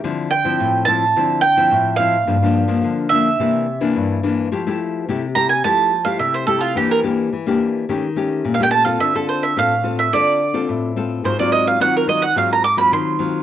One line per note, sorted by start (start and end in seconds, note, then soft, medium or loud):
0.04 0.57 D3 medium
0.04 0.30 F3 medium
0.04 0.30 C4 medium
0.04 0.30 E4 medium
0.31 0.85 G5 medium
0.45 0.82 F3 medium
0.45 0.83 C4 medium
0.45 0.83 E4 medium
0.60 1.13 A2 medium
0.85 1.04 F3 medium
0.85 1.04 C4 medium
0.85 1.04 E4 medium
0.85 1.41 A5 loud
1.16 1.69 D3 medium
1.16 1.42 F3 soft
1.16 1.42 C4 medium
1.16 1.43 E4 medium
1.41 1.96 G5 loud
1.57 1.95 F3 medium
1.57 1.95 C4 medium
1.57 1.95 E4 medium
1.71 2.24 A2 medium
1.96 2.15 F3 medium
1.96 2.16 C4 medium
1.96 2.16 E4 medium
1.96 3.13 F5 medium
2.27 2.80 G2 medium
2.27 2.36 F3 medium
2.27 2.36 A#3 medium
2.27 2.36 D4 medium
2.42 2.65 F3 medium
2.42 2.66 A#3 medium
2.42 2.66 D4 medium
2.68 3.06 F3 medium
2.68 3.06 A#3 medium
2.68 3.07 D4 medium
2.84 3.37 D3 medium
3.09 3.28 F3 medium
3.09 3.28 A#3 soft
3.09 3.28 D4 medium
3.09 4.19 E5 medium
3.40 3.93 C3 medium
3.40 3.66 E3 soft
3.40 3.66 A#3 medium
3.40 3.66 D4 medium
3.81 4.19 E3 medium
3.81 4.19 A#3 medium
3.81 4.19 D4 medium
3.96 4.49 G2 medium
4.23 4.49 E3 medium
4.23 4.49 A#3 medium
4.23 4.49 D4 medium
4.52 5.05 F3 medium
4.52 4.61 A3 soft
4.52 4.61 E4 medium
4.52 4.62 G4 medium
4.67 5.04 A3 medium
4.67 5.04 E4 medium
4.67 5.04 G4 medium
5.08 5.61 C3 medium
5.08 5.25 A3 medium
5.08 5.25 E4 medium
5.08 5.25 G4 medium
5.35 5.52 A3 soft
5.35 5.52 E4 medium
5.35 5.52 G4 medium
5.35 5.49 A#5 loud
5.49 5.63 G#5 medium
5.64 6.17 F3 medium
5.64 5.90 A3 medium
5.64 5.91 E4 soft
5.64 5.91 G4 medium
5.64 6.03 A5 medium
6.05 6.43 A3 medium
6.05 6.43 E4 medium
6.05 6.43 G4 medium
6.05 6.19 F5 medium
6.19 6.73 C3 medium
6.19 6.33 E5 medium
6.34 6.46 C5 medium
6.47 6.73 A3 medium
6.47 6.73 E4 medium
6.47 6.74 G4 medium
6.47 6.61 A4 medium
6.61 6.75 F4 medium
6.75 7.29 E3 medium
6.75 6.99 A#3 medium
6.75 7.00 D4 medium
6.75 7.00 G4 medium
6.75 6.90 G4 medium
6.91 6.99 A#4 medium
7.03 7.30 A#3 medium
7.03 7.30 D4 medium
7.03 7.30 G4 medium
7.33 7.86 E3 medium
7.46 7.84 A#3 medium
7.46 7.84 D4 medium
7.46 7.84 G4 medium
7.89 8.42 D#3 medium
7.89 8.05 A3 medium
7.89 8.05 C#4 soft
7.89 8.05 G4 medium
8.16 8.54 A3 medium
8.16 8.54 C#4 medium
8.16 8.54 G4 medium
8.44 8.98 A#2 medium
8.54 8.63 F5 medium
8.59 8.82 A3 medium
8.59 8.83 C#4 medium
8.59 8.83 G4 medium
8.59 8.70 G5 medium
8.71 8.84 A5 loud
8.84 9.14 C4 medium
8.84 9.14 F4 medium
8.84 9.14 A4 medium
8.84 8.99 F5 medium
9.00 9.54 D3 medium
9.00 9.14 E5 medium
9.15 9.52 C4 medium
9.15 9.52 F4 medium
9.15 9.53 A4 medium
9.15 9.28 A4 medium
9.29 9.42 C5 medium
9.43 9.56 E5 medium
9.56 10.10 A2 medium
9.56 9.73 C4 medium
9.56 9.73 F4 soft
9.56 9.73 A4 medium
9.56 9.97 F5 medium
9.83 10.08 C4 medium
9.83 10.08 F4 soft
9.83 10.08 A4 medium
9.99 10.12 E5 medium
10.13 10.66 D3 medium
10.13 10.39 C4 soft
10.13 10.39 F4 medium
10.13 10.40 A4 medium
10.13 10.65 D5 medium
10.54 10.92 C4 medium
10.54 10.92 F4 medium
10.54 10.92 A4 medium
10.69 11.22 A2 medium
10.96 11.22 C4 medium
10.96 11.22 F4 medium
10.96 11.23 A4 medium
11.24 11.78 G#2 medium
11.24 11.33 F#3 medium
11.24 11.33 C4 medium
11.24 11.33 F4 medium
11.24 11.39 C5 medium
11.39 11.77 F#3 medium
11.39 11.77 C4 medium
11.39 11.77 F4 medium
11.39 11.52 D5 medium
11.52 11.66 D#5 medium
11.68 11.81 F5 medium
11.80 12.34 D#3 medium
11.80 12.04 F#3 medium
11.80 12.04 C4 medium
11.80 12.04 F4 medium
11.80 11.95 F#5 loud
11.97 12.09 A#4 medium
12.07 12.24 F#3 medium
12.07 12.25 C4 medium
12.07 12.25 F4 medium
12.07 12.22 D#5 medium
12.22 12.36 F#5 medium
12.36 12.89 G#2 medium
12.36 12.63 F#3 medium
12.36 12.63 C4 medium
12.36 12.63 F4 medium
12.36 12.51 F5 medium
12.53 12.64 A#5 medium
12.64 12.78 D6 medium
12.77 13.15 F#3 medium
12.77 13.16 C4 medium
12.77 13.16 F4 medium
12.77 12.92 B5 medium
12.92 13.43 D#3 medium
12.92 13.43 C6 medium
13.19 13.43 F#3 medium
13.19 13.43 C4 medium
13.19 13.43 F4 medium